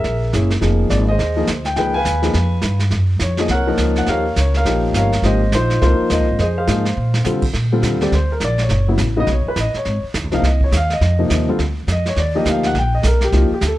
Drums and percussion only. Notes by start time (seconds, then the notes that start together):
0.04 brush sweep, snare
0.33 snare, hi-hat pedal
0.50 snare
0.62 brush sweep, snare
0.90 snare, hi-hat pedal
1.19 brush sweep, snare
1.47 snare, hi-hat pedal
1.65 snare
1.76 brush sweep, snare
2.05 snare, hi-hat pedal
2.23 snare
2.33 brush sweep, snare
2.62 snare, hi-hat pedal
2.79 snare
2.91 brush sweep, snare
3.19 snare, hi-hat pedal
3.37 snare
3.48 brush sweep, snare
3.78 snare, hi-hat pedal
3.96 snare
4.06 brush sweep, snare
4.36 snare, hi-hat pedal
4.54 snare
4.65 brush sweep, snare
4.94 snare, hi-hat pedal
5.12 snare
5.23 brush sweep, snare
5.52 snare, hi-hat pedal
5.70 snare
5.82 brush sweep, snare
6.10 snare, hi-hat pedal
6.39 brush sweep, snare
6.67 snare, hi-hat pedal
6.85 snare
7.14 snare
7.25 snare, hi-hat pedal
7.42 kick, crash
7.53 brush sweep, snare
7.83 snare, hi-hat pedal
8.01 snare
8.12 brush sweep, snare
8.40 snare, hi-hat pedal
8.58 snare
8.69 brush sweep, snare
8.98 snare, hi-hat pedal
9.27 brush sweep, snare
9.56 snare, hi-hat pedal
9.74 snare
9.85 brush sweep, snare
10.14 snare, hi-hat pedal
10.32 snare
10.44 brush sweep, snare
10.61 kick
10.72 snare, hi-hat pedal
10.90 snare
11.01 brush sweep, snare
11.30 snare, hi-hat pedal
11.59 brush sweep, snare
11.88 snare, hi-hat pedal
12.06 snare
12.16 brush sweep, snare
12.46 snare, hi-hat pedal
12.63 snare
12.75 brush sweep, snare
13.03 snare, hi-hat pedal
13.21 snare
13.32 brush sweep, snare
13.61 snare, hi-hat pedal